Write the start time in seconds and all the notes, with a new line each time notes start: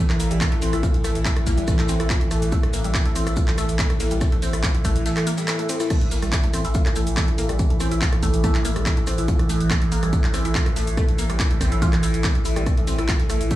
Already playing: A2 E3 E4 A4 E5
0.10 cross-stick, clap, closed hi-hat
0.20 A1 A#3, open hi-hat, shaker
0.31 A1 G3, closed hi-hat, shaker
0.41 kick, cross-stick, snare, clap, closed hi-hat, shaker
0.52 A3, closed hi-hat
0.62 A1 C4, open hi-hat, shaker
0.73 A1 E4, cross-stick, closed hi-hat, shaker
0.83 F4, kick, closed hi-hat, shaker
0.94 closed hi-hat
1.04 A1 A3, cross-stick, open hi-hat, shaker
1.15 A1, closed hi-hat, shaker
1.25 A3, kick, snare, clap, closed hi-hat, shaker
1.37 cross-stick, closed hi-hat
1.47 A1 A#3, kick, open hi-hat, shaker
1.58 A1 G3, closed hi-hat, shaker
1.67 kick, cross-stick, closed hi-hat, shaker
1.79 A3, clap, closed hi-hat
1.88 A1 C4, snare, open hi-hat, shaker
2.00 A1 E4, cross-stick, closed hi-hat, shaker
2.10 F4, kick, snare, clap, closed hi-hat, shaker
2.21 closed hi-hat
2.31 A1 A3, cross-stick, open hi-hat, shaker
2.42 A1, snare, closed hi-hat, shaker
2.52 A3, kick, closed hi-hat, shaker
2.63 cross-stick, closed hi-hat
2.73 A1 A#3, open hi-hat, shaker
2.84 A1 G3, closed hi-hat, shaker
2.94 kick, cross-stick, snare, clap, closed hi-hat, shaker
3.06 A3, snare, closed hi-hat
3.15 A1 C4, open hi-hat, shaker
3.27 A1 E4, cross-stick, closed hi-hat, shaker
3.36 F4, kick, closed hi-hat, shaker
3.48 clap, closed hi-hat
3.58 A1 A3, cross-stick, open hi-hat, shaker
3.69 A1, closed hi-hat, shaker
3.79 A3, kick, snare, clap, closed hi-hat, shaker
3.90 cross-stick, closed hi-hat
4.00 A1 A#3, snare, open hi-hat, shaker
4.11 A1 G3, closed hi-hat, shaker
4.21 kick, cross-stick, snare, closed hi-hat, shaker
4.32 A3, closed hi-hat
4.42 A1 C4, open hi-hat, shaker
4.53 A1 E4, cross-stick, closed hi-hat, shaker
4.63 F4, kick, snare, clap, closed hi-hat, shaker
4.75 closed hi-hat
4.85 A1 A3, kick, cross-stick, open hi-hat, shaker
4.96 A1, closed hi-hat, shaker
5.06 A3, snare, closed hi-hat, shaker
5.17 cross-stick, clap, closed hi-hat
5.27 A#3, open hi-hat, shaker
5.37 G3, snare, closed hi-hat, shaker
5.47 cross-stick, snare, clap, closed hi-hat, shaker
5.59 A3, closed hi-hat
5.69 C4, open hi-hat, shaker
5.80 E4, cross-stick, snare, closed hi-hat, shaker
5.90 A2 E3 A3, kick, cross-stick, closed hi-hat, crash, shaker
6.01 closed hi-hat
6.11 A1 A#3, open hi-hat, shaker
6.22 A1 G3, cross-stick, closed hi-hat, shaker
6.32 kick, snare, clap, closed hi-hat, shaker
6.43 A3, snare, closed hi-hat
6.54 A1 C4, cross-stick, open hi-hat, shaker
6.65 A1 E4, closed hi-hat, shaker
6.74 F4, kick, closed hi-hat, shaker
6.86 cross-stick, clap, closed hi-hat
6.95 A1 A3, open hi-hat, shaker
7.07 A1, closed hi-hat, shaker
7.17 A3, kick, cross-stick, snare, clap, closed hi-hat, shaker
7.28 closed hi-hat
7.38 A1 A#3, open hi-hat, shaker
7.49 A1 G3, cross-stick, closed hi-hat, shaker
7.59 kick, closed hi-hat, shaker
7.70 A3, closed hi-hat
7.80 A1 C4, cross-stick, open hi-hat, shaker
7.91 A1 E4, closed hi-hat, shaker
8.02 F4, kick, snare, clap, closed hi-hat, shaker
8.12 cross-stick, closed hi-hat
8.23 A1 A3, kick, open hi-hat, shaker
8.34 A1, closed hi-hat, shaker
8.44 A3, kick, cross-stick, closed hi-hat, shaker
8.55 clap, closed hi-hat
8.65 A1 A#3, snare, open hi-hat, shaker
8.76 A1 G3, cross-stick, closed hi-hat, shaker
8.85 kick, snare, clap, closed hi-hat, shaker
8.97 A3, closed hi-hat
9.06 A1 C4, cross-stick, open hi-hat, shaker
9.18 A1 E4, snare, closed hi-hat, shaker
9.28 F4, kick, closed hi-hat, shaker
9.39 cross-stick, closed hi-hat
9.49 A1 A3, open hi-hat, shaker
9.61 A1, closed hi-hat, shaker
9.70 A3, kick, cross-stick, snare, clap, closed hi-hat, shaker
9.82 snare, closed hi-hat
9.92 A1 A#3, open hi-hat, shaker
10.02 A1 G3, cross-stick, closed hi-hat, shaker
10.13 kick, closed hi-hat, shaker
10.24 A3, clap, closed hi-hat
10.34 A1 C4, cross-stick, open hi-hat, shaker
10.45 A1 E4, closed hi-hat, shaker
10.54 F4, kick, snare, clap, closed hi-hat, shaker
10.66 cross-stick, closed hi-hat
10.76 A1 A3, open hi-hat, shaker
10.87 A1, closed hi-hat, shaker
10.97 A3, kick, cross-stick, closed hi-hat, shaker
11.09 closed hi-hat
11.18 A1 A#3, open hi-hat, shaker
11.29 A1 G3, cross-stick, closed hi-hat, shaker
11.39 kick, snare, clap, closed hi-hat, shaker
11.51 A3, closed hi-hat
11.61 A1 C4, kick, cross-stick, open hi-hat, shaker
11.72 A1 E4, closed hi-hat, shaker
11.82 F4, kick, closed hi-hat, shaker
11.93 cross-stick, clap, closed hi-hat
12.03 A1 E4, snare, open hi-hat, shaker
12.14 A1, closed hi-hat, shaker
12.23 C4, kick, cross-stick, snare, clap, closed hi-hat, shaker
12.35 closed hi-hat
12.45 A1 E4, open hi-hat, shaker
12.56 A1 G3, cross-stick, snare, closed hi-hat, shaker
12.66 kick, cross-stick, closed hi-hat, shaker
12.77 A3, closed hi-hat
12.87 A1 C4, open hi-hat, shaker
12.98 A1 E4, cross-stick, closed hi-hat, shaker
13.08 F4, kick, snare, clap, closed hi-hat, shaker
13.20 snare, closed hi-hat
13.30 A1 A3, cross-stick, open hi-hat, shaker
13.41 A1, closed hi-hat, shaker
13.51 A3, kick, closed hi-hat, shaker